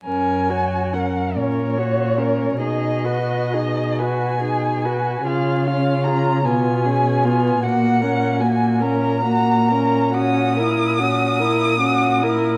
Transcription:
<<
  \new Staff \with { instrumentName = "Violin" } { \time 6/8 \key fis \major \tempo 4. = 48 gis''4 fis''8 cis''4. | dis''4. gis''4. | eis''8 eis''8 ais''8 gis''4. | fis''4 gis''8 ais''4. |
\key fis \mixolydian dis'''2. | }
  \new Staff \with { instrumentName = "Violin" } { \time 6/8 \key fis \major ais'8 cis''8 ais'8 ais'8 cis''8 ais'8 | gis'8 b'8 gis'8 b'8 gis'8 b'8 | gis'8 eis'8 gis'8 eis'8 gis'8 eis'8 | fis'8 ais'8 fis'8 ais'8 fis'8 ais'8 |
\key fis \mixolydian fis'8 ais'8 fis'8 ais'8 fis'8 ais'8 | }
  \new Staff \with { instrumentName = "Viola" } { \time 6/8 \key fis \major cis'8 fis'8 cis'8 cis'8 fis'8 cis'8 | dis'8 fis'8 dis'8 fis'8 dis'8 fis'8 | eis'8 cis'8 eis'8 b8 cis'8 b8 | ais8 cis'8 ais8 cis'8 ais8 cis'8 |
\key fis \mixolydian cis'8 e'8 cis'8 e'8 cis'8 e'8 | }
  \new Staff \with { instrumentName = "Cello" } { \clef bass \time 6/8 \key fis \major fis,4. ais,4. | b,2. | cis4. b,4. | ais,2.~ |
\key fis \mixolydian ais,2. | }
>>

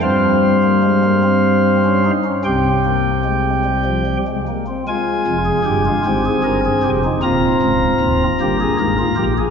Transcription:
<<
  \new Staff \with { instrumentName = "Pipe organ" } { \time 12/8 \key f \minor \tempo 4. = 51 << { f''2. g''2~ g''8 r8 | aes''2. bes''2. | } \\ { c''2. g'2~ g'8 r8 | f'8. aes'16 g'16 f'16 g'16 aes'16 bes'16 aes'16 g'16 ees'16 f'4. g'16 aes'16 bes'16 f'16 g'16 aes'16 | } >> }
  \new Staff \with { instrumentName = "Pipe organ" } { \clef bass \time 12/8 \key f \minor << { c'8. bes16 aes16 bes16 c'8. des'16 ees'16 des'16 c'8 bes8 aes8 g16 f16 g16 aes16 bes16 c'16 | aes4. c'4. c'4. bes4. | } \\ { <g, g>2. <c, c>2~ <c, c>8 r8 | r8 <f,, f,>8 <g,, g,>8 <aes,, aes,>8 <g,, g,>8 <f,, f,>8 <ees,, ees,>8 <des,, des,>8 <ees,, ees,>8 <g,, g,>8 <aes,, aes,>8 <bes,, bes,>8 | } >> }
>>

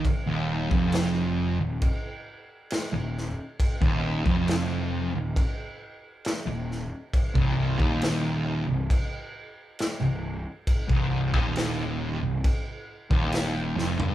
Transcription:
<<
  \new Staff \with { instrumentName = "Distorted electric guitar" } { \clef bass \time 4/4 \key c \minor \tempo 4 = 68 r16 ees,8 f,4 ees,16 r4 r16 ees,8 r16 | r16 ees,8 f,4 ees,16 r4 r16 ees,8 r16 | r16 c,8 ees,4 c,16 r4 r16 c,8 r16 | r16 c,8 ees,4 c,16 r8. ees,8. f,16 g,16 | }
  \new Staff \with { instrumentName = "Picked electric bass" } { \clef bass \time 4/4 \key c \minor r16 ees,,8 f,,4 ees,,16 r4 r16 ees,,8 r16 | r16 ees,,8 f,,4 ees,,16 r4 r16 ees,,8 r16 | r16 c,,8 ees,,4 c,,16 r4 r16 c,,8 r16 | r16 c,,8 ees,,4 c,,16 r8. ees,,8. f,,16 g,,16 | }
  \new DrumStaff \with { instrumentName = "Drums" } \drummode { \time 4/4 <cymc bd>8. bd16 <cymc sn>4 <cymc bd>4 <cymc sn>8 sn8 | <cymc bd>16 bd8 bd16 <cymc sn>4 <cymc bd>4 <cymc sn>8 sn8 | <cymc bd>16 bd8 bd16 <cymc sn>4 <cymc bd>4 <cymc sn>4 | <cymc bd>16 bd8 bd16 <cymc sn>4 <cymc bd>8. bd16 <cymc sn>8 sn16 tomfh16 | }
>>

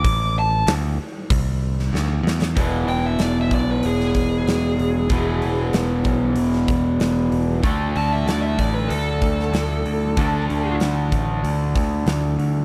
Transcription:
<<
  \new Staff \with { instrumentName = "Lead electric guitar" } { \time 4/4 \key e \mixolydian \tempo 4 = 95 d'''8 a''8 r2. | r8 g''16 e''16 d''16 e''16 d''16 b'16 gis'2~ | gis'4 r2. | r8 a''16 e''16 d''16 e''16 d''16 b'16 a'2~ |
a'4 r2. | }
  \new Staff \with { instrumentName = "Overdriven electric guitar" } { \clef bass \time 4/4 \key e \mixolydian r1 | <e, b, e>1 | <e, b, e>1 | <d a d'>1 |
<d a d'>1 | }
  \new Staff \with { instrumentName = "Picked electric bass" } { \clef bass \time 4/4 \key e \mixolydian a,,4 d,8 r8 c,4 d,8 e,8 | e,,8 e,,8 e,,8 b,,8 e,,8 e,,8 e,,8 e,,8 | e,,8 e,,8 e,,8 b,,8 e,,8 e,,8 e,,8 e,,8 | d,8 d,8 d,8 a,,8 d,8 d,8 d,8 d,8 |
d,8 d,8 d,8 a,,8 d,8 d,8 d,8 d,8 | }
  \new DrumStaff \with { instrumentName = "Drums" } \drummode { \time 4/4 <hho bd>4 <hho sn>4 <hho bd>8. sn16 sn8 sn16 sn16 | <hho bd>8 hho8 <hho sn>8 <hho bd>8 hho16 sn16 <hho bd>8 <hho sn>8 hho8 | <hho bd>8 hho8 <hho sn>8 <hho bd>8 hho16 sn16 <hho bd>8 <hho sn>8 hho8 | <hho bd>8 hho8 <hho sn>8 <hho bd>8 hho8 <hho bd>16 sn16 <hho sn>8 hho8 |
<hho bd>8 hho8 <hho sn>8 <hho bd>8 hho8 <hho bd>8 <hho sn>8 hho8 | }
>>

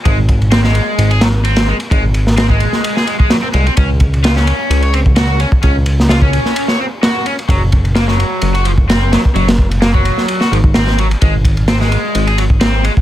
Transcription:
<<
  \new Staff \with { instrumentName = "Overdriven electric guitar" } { \time 4/4 \key aes \mixolydian \tempo 4 = 129 aes16 r8. c'16 aes4 aes'16 ges16 r16 c'8 aes16 r16 | aes16 r8. c'16 aes4 aes'16 aes16 aes16 ges16 c'16 aes16 c'16 | des'16 r8. f'16 des'4 des''16 c'16 r16 ges'8 des'16 r16 | des'16 r8. f'16 des'4 des''16 c'16 r16 ges'8 des'16 r16 |
ges16 r8. bes16 ges4 ges'16 f16 r16 c'8 ges16 r16 | ges16 r8. bes16 ges4 ges'16 f16 r16 c'8 ges16 r16 | aes16 r8. c'16 aes4 aes'16 ges16 r16 c'8 aes16 r16 | }
  \new Staff \with { instrumentName = "Analog synth bass" } { \clef bass \time 4/4 \key aes \mixolydian aes,,4. r8 aes,,4. r8 | aes,,4. r2 c,8 | des,4. r8 des,4. r8 | des,4. r2 r8 |
ges,,4. r8 ges,,4. r8 | ges,,4. r4 aes,,4. | aes,,4. r8 aes,,4. r8 | }
  \new DrumStaff \with { instrumentName = "Drums" } \drummode { \time 4/4 <bd cymr>8 <bd cymr>16 cymr16 <cymr sn>16 sn16 cymr8 cymr16 cymr16 <cymr sn>8 cymr16 <cymr sn>8 cymr16 | <bd cymr>8 cymr16 sn16 <cymr sn>16 bd16 cymr16 sn16 cymr16 sn16 cymr16 bd16 <cymr sn>8 cymr16 cymr16 | <bd cymr>8 <bd cymr>16 cymr16 <cymr sn>16 sn16 cymr8 cymr16 cymr16 cymr16 bd16 <cymr sn>8 cymr16 bd16 | <bd cymr>8 cymr16 sn16 <cymr sn>16 bd16 cymr16 sn16 cymr16 sn8. <cymr sn>8 cymr16 cymr16 |
<bd cymr>8 <bd cymr>16 cymr16 <cymr sn>16 sn16 cymr8 cymr16 cymr16 cymr16 bd16 <cymr sn>8 <cymr sn>16 bd16 | cymr16 <cymr sn>16 bd16 cymr16 <cymr sn>16 bd16 cymr16 sn16 cymr16 sn16 cymr16 bd16 <cymr sn>16 sn16 cymr16 cymr16 | <bd cymr>8 <bd cymr>16 cymr16 <cymr sn>16 sn16 cymr8 cymr16 cymr16 cymr16 bd16 <cymr sn>8 cymr16 bd16 | }
>>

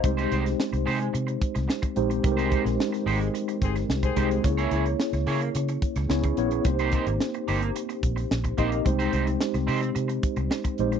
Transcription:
<<
  \new Staff \with { instrumentName = "Horn section" } { \time 4/4 \key c \phrygian \tempo 4 = 109 r1 | r2 r8 <c' aes' c''>16 r8 <c' aes' c''>8. | r1 | r1 |
r1 | }
  \new Staff \with { instrumentName = "Clean electric guitar" } { \time 4/4 \key c \phrygian r16 <aes ees' g' c''>16 <aes ees' g' c''>16 r8. <aes ees' g' c''>8 r2 | r16 <aes ees' g' c''>16 <aes ees' g' c''>16 r8. <aes ees' g' c''>8 r4. <aes ees' g' c''>8 | r16 <bes fes' aes' des''>16 <bes fes' aes' des''>16 r8. <bes fes' aes' des''>8 r2 | r16 <bes ees' g' c''>16 <bes ees' g' c''>16 r8. <bes ees' g' c''>8 r4. <bes ees' g' c''>8 |
r16 <c' ees' g' c''>16 <c' ees' g' c''>16 r8. <c' ees' g' c''>8 r2 | }
  \new Staff \with { instrumentName = "Tine electric piano" } { \time 4/4 \key c \phrygian <aes c' ees' g' c''>4. r2 <aes c' ees' g' c''>8 | <aes c' ees' g' bes' c''>4. r2 <aes c' ees' g' c''>8 | <bes des' fes' aes' des''>4. r4. <ces' des' fes' aes' des''>8 <ces' des' fes' aes' des''>8 | <bes c' ees' g' c''>4. r2 <bes c' ees' g' ees''>8 |
<aes c' ees' g' c''>4. r2 <aes c' ees' g' c''>8 | }
  \new Staff \with { instrumentName = "Fingered electric bass" } { \clef bass \time 4/4 \key c \phrygian c,8 c,8 r16 c,16 c8 c8 r16 c,16 r8 bes,,8 | c,8. bes,,16 r8 aes,,8 r8 g,,8 c,8 c,8 | des,8 des,8 r16 des,16 des8 des8 r16 des,16 des,8 bes,,8 | c,8. aes,,16 r8 g,,8 r8 bes,,8 bes,,8 bes,,8 |
c,8 c,8 r16 c,16 c8 c8 r16 c,16 r8 bes,,8 | }
  \new DrumStaff \with { instrumentName = "Drums" } \drummode { \time 4/4 <hh bd>16 hh16 hh16 <hh sn>16 sn16 hh16 hho16 hh16 hh16 hh16 <hh bd>16 <hh sn>16 sn16 <hh bd>16 hh16 hh16 | <hh bd>16 hh16 <hh bd>16 <hh sn>16 sn16 <hh sn>16 hho16 hh16 hh16 hh16 <hh bd>16 <hh sn>16 sn16 <hh bd>16 <hh bd>16 hh16 | <hh bd>16 hh16 hh16 hh16 sn16 <hh sn>16 hho16 hh16 hh16 hh16 <hh bd>16 <hh sn>16 sn16 <hh bd>16 hh16 hh16 | <hh bd>16 hh16 <hh bd>16 hh16 sn16 hh16 hho16 hh16 hh16 hh16 <hh bd>16 hh16 sn16 <hh bd>16 <hh bd>16 hh16 |
<hh bd>16 hh16 hh16 hh16 sn16 <hh sn>16 hho16 hh16 hh16 hh16 <hh bd>16 hh16 sn16 <hh bd>16 hh16 hh16 | }
>>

